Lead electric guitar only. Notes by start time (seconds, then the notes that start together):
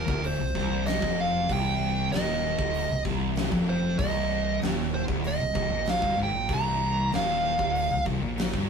Already playing: A#4
0.26 C5
0.87 D#5
1.20 F5
1.53 G5
2.12 D#5
3.69 C5
3.99 D#5
4.94 C5
5.27 D#5
5.90 F5
6.23 G5
6.54 A#5
7.15 F5